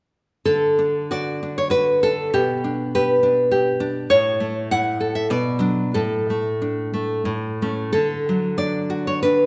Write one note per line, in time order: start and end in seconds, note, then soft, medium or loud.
0.45 2.30 D3 soft
0.45 1.08 A4 medium
0.79 1.42 D4 soft
1.11 1.69 F#4 soft
1.11 1.56 D5 medium
1.43 2.02 D4 soft
1.58 1.71 C#5 medium
1.70 2.32 F#4 soft
1.70 2.01 B4 medium
2.03 2.34 D4 soft
2.03 2.32 A4 medium
2.34 4.07 B2 soft
2.34 2.90 G4 medium
2.64 3.22 D4 soft
2.95 3.50 G4 soft
2.95 3.78 B4 medium
3.23 3.79 D4 soft
3.51 4.11 G4 soft
3.80 4.10 D4 soft
4.10 5.29 A2 soft
4.10 4.68 C#5 medium
4.40 5.32 A3 soft
4.71 5.33 E4 soft
4.71 5.15 F#5 medium
5.00 5.32 A4 soft
5.15 5.30 E5 medium
5.30 5.94 B2 soft
5.30 5.93 D5 medium
5.59 5.91 F#3 soft
5.59 5.91 D4 soft
5.94 7.24 A2 soft
5.94 7.58 A4 medium
6.30 6.92 A3 soft
6.62 7.29 D4 soft
6.94 7.28 A3 soft
7.25 7.92 A2 soft
7.62 7.92 A3 soft
7.62 7.92 C#4 soft
7.93 9.46 D3 soft
7.93 8.56 A4 medium
8.29 9.23 F#3 soft
8.58 9.23 D4 soft
8.58 9.04 D5 medium
8.90 9.46 F#4 soft
9.07 9.22 C#5 medium
9.23 9.46 D4 soft
9.23 9.46 B4 medium